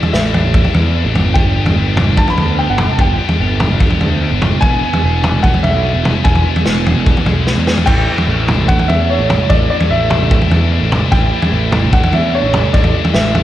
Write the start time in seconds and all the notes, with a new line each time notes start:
Already playing: A2 D3 E3 A3 D4 E4 A4 D5
0.03 floor tom
0.13 A1 D3 A3 D4 E4 E5, snare
0.33 A3 D4 E4, floor tom
0.44 A1
0.54 A3, kick, floor tom
0.64 floor tom
0.74 E2 E3, floor tom
0.94 A2 D3 A3 D4 E4
1.05 A1
1.14 G1 G2 D3 G3 B3 D4 G4, floor tom
1.34 G2 D3 G3 B3 D4 G4 G5, kick, floor tom
1.55 G3 B3 D4 G4
1.66 floor tom
1.76 G1 G3 B3 D4 G4
1.96 G3 B3 D4 G4, floor tom, mid tom
2.07 G1
2.17 B3 A5, kick, floor tom
2.27 B5, floor tom
2.37 D2 B3, floor tom
2.58 G2 D3 G3 B3 D4 G4 G5
2.69 G1 F#5
2.78 G3 B3 D4 G4, floor tom, mid tom
2.92 A5
2.98 G1 G2 D3 G3 B3 D4 G4 G5, kick, floor tom
3.17 G3 B3 D4 G4
3.29 floor tom
3.38 G1 G3 B3 D4 G4
3.59 G3 B3 D4 G4, floor tom, mid tom
3.71 G1
3.80 B3, kick, floor tom
3.90 floor tom
4.01 D2 B3, floor tom
4.21 G2 D3 G3 B3 D4 G4
4.32 G1
4.41 G3 B3 D4 G4, floor tom, mid tom
4.61 E1 E2 B2 E3 B3 E4 G#4 G#5, kick, floor tom
4.82 E3 B3 E4 G#4
4.93 floor tom
5.02 E1 E3 B3 E4 G#4
5.23 E3 B3 D4 E4 G#4, floor tom, mid tom
5.34 E1
5.43 B3 F#5, kick, floor tom
5.54 floor tom
5.63 B1 B3 E5, floor tom
5.83 E2 B2 E3 B3 D4 E4 G#4
5.94 E1
6.04 E3 B3 E4 G#4, floor tom, mid tom
6.24 E1 E2 B2 E3 B3 E4 G#4 G#5, kick, floor tom
6.35 floor tom
6.45 E3 B3 E4 G#4
6.56 floor tom
6.65 E1 E3 B3 E4 G#4, snare
6.86 E3 B3 D4 E4 G#4, floor tom
6.96 E1
7.06 B3, kick, floor tom
7.17 floor tom
7.26 B1 B3, floor tom
7.46 E2 B2 E3 B3 D4 E4 G#4, snare
7.57 E2
7.67 E3 B3 E4 G#4, snare
7.77 floor tom
7.86 A1 A2 D3 E3 A3 D4 E4 G5, kick, floor tom, crash
7.90 E4
8.07 E3 A3 D4 E4
8.18 floor tom
8.28 A1 D3 A3 D4 E4
8.48 A3 D4 E4, floor tom, mid tom
8.58 A1
8.68 A3 D4 F#5, kick, floor tom
8.79 floor tom
8.88 E2 E3 C#4 E5, floor tom
9.09 A2 D3 A3 D4 E4 C#5
9.19 A1
9.29 A3 D4 E4 A4, floor tom, mid tom
9.49 A1 A2 D3 E3 A3 D4 E4 D5, kick, floor tom
9.69 E3 A3 B3 D4 E4 D5
9.80 floor tom
9.90 A1 D3 A3 D4 E4 E5
10.10 A3 D4 E4, floor tom, mid tom
10.21 A1
10.30 A3, kick, floor tom
10.41 floor tom
10.51 E2 E3, floor tom
10.70 A2 D3 A3 D4 E4
10.81 A1
10.91 A3 D4 E4 A4, floor tom, mid tom
11.11 A1 A2 D3 E3 A3 D4 E4 G5, kick, floor tom
11.32 E3 A3 D4 E4
11.42 floor tom
11.52 A1 D3 A3 D4 E4
11.72 A3 D4 E4, floor tom, mid tom
11.83 A1
11.92 A3 D4 F#5, kick, floor tom
12.03 floor tom
12.12 E2 E3 C#4 E5, floor tom
12.33 A2 D3 A3 D4 E4 C#5
12.42 A1
12.53 A3 D4 E4 A4, floor tom, mid tom
12.73 A1 A2 D3 E3 A3 D4 E4 D5, kick, floor tom
12.84 floor tom
12.94 E3 A3 D4 E4
13.04 floor tom
13.14 A1 D3 A3 D4 E4 E5, snare
13.34 A3 D4 E4, floor tom